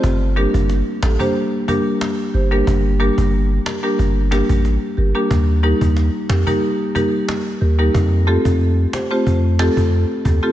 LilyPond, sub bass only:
\new Staff \with { instrumentName = "Sub bass" } { \clef bass \time 4/4 \key g \minor \tempo 4 = 91 g,,8. g,,8 r16 a,,16 r4. r16 g,,8 | g,,8. g,,8. r8 g,,8. a,,8 r16 g,,16 r16 | ees,8. ees,8 r16 f,16 r4. r16 ees,8 | f,8. f,8. r8 f,8. f,8 r16 ees,16 r16 | }